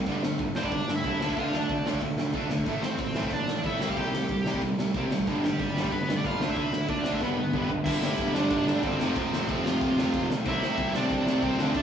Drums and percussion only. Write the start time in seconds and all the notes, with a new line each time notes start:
0.06 kick, open hi-hat
0.23 snare
0.38 kick, open hi-hat
0.55 snare
0.64 kick
0.71 kick, open hi-hat
0.88 snare
1.03 kick, open hi-hat
1.21 snare
1.29 kick
1.37 kick, open hi-hat
1.53 snare
1.69 kick, open hi-hat
1.86 snare
1.93 kick
2.01 kick, open hi-hat
2.18 snare
2.33 kick, open hi-hat
2.50 snare
2.58 kick
2.66 kick, open hi-hat
2.83 snare
2.99 kick, open hi-hat
3.15 snare
3.23 kick
3.30 kick, open hi-hat
3.48 snare
3.64 kick, open hi-hat
3.81 snare
3.89 kick
3.97 kick, open hi-hat
4.13 snare
4.29 kick, open hi-hat
4.46 snare
4.54 kick
4.62 kick, open hi-hat
4.79 snare
4.94 kick, open hi-hat
5.11 snare
5.19 kick
5.27 kick, open hi-hat
5.44 snare
5.59 kick, open hi-hat
5.77 snare
5.84 kick
5.92 kick, open hi-hat
6.09 snare
6.25 kick, open hi-hat
6.41 snare
6.49 kick
6.56 kick, open hi-hat
6.73 snare
6.88 kick, open hi-hat
7.04 snare
7.13 kick
7.21 kick, snare
7.37 high tom
7.53 kick, mid tom
7.69 floor tom
7.86 kick, crash
8.02 snare
8.18 kick, crash
8.35 snare
8.50 kick, crash
8.67 snare
8.83 kick, crash
9.00 snare
9.16 kick, crash
9.33 snare
9.49 kick, crash
9.66 snare
9.81 kick, crash
9.98 snare
10.14 kick, crash
10.30 snare
10.45 kick, crash
10.62 snare
10.78 kick, crash
10.94 snare
11.10 kick, crash
11.27 snare
11.42 kick, crash
11.59 snare
11.75 kick, crash